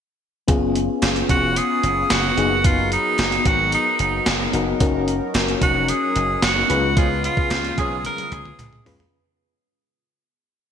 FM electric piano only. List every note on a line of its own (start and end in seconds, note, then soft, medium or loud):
0.48 1.49 B3 medium
0.48 1.49 C#4 medium
0.48 1.50 F4 medium
0.48 1.50 G#4 medium
2.37 3.39 B3 medium
2.37 3.39 D#4 medium
2.37 3.39 F#4 medium
2.37 3.39 G#4 medium
4.54 4.79 B3 medium
4.54 4.79 D#4 medium
4.54 4.79 F#4 medium
4.54 4.80 A#4 medium
4.80 5.82 C#4 medium
4.80 5.82 D#4 medium
4.80 5.82 F#4 medium
4.80 5.82 A#4 loud
6.69 7.47 C#3 medium
6.69 7.71 C#4 medium
6.69 7.71 F4 medium
6.69 7.71 G#4 medium
6.69 7.72 B4 medium
8.85 9.11 C#4 medium
8.85 9.11 F4 medium
8.85 9.12 G#4 medium
8.85 9.12 B4 medium